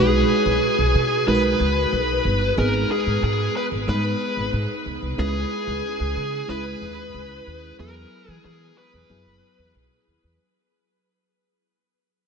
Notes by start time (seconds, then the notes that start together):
Already playing: B1 G#3 D#4 F#4 G#4 B4
0.46 B1
0.78 B1
0.95 B2
1.27 B1 G#3 D#4 F#4 A#4 B4
1.34 B4
1.60 C#2
1.92 B1
2.25 G1
2.57 G#1 G#3 B3 D#4 G#4 A#4
2.92 G#4
3.06 G#2
3.23 G#2 G#4
3.57 B4
3.72 G#1
3.87 G#2 G#3 B3 D#4 B4
4.37 G#1
4.53 G#2
4.86 C#2
5.02 C2
5.18 C#2 G#3 C#4 E4 G#4 B4
5.67 C#2
6.00 C#2
6.16 C#3
6.48 C#2 G#3 C#4 E4 B4
6.81 D#2
7.14 C#2
7.47 D#2
7.79 E2 F#3 B3 E4 G#4 A#4
8.28 E3 G#4
8.44 E3 G#4
8.78 B4
8.93 E2
9.09 F#2 F#3 B3 E4 G#4
9.26 F#1
9.59 E2
9.75 B1
10.07 D#2
10.24 E2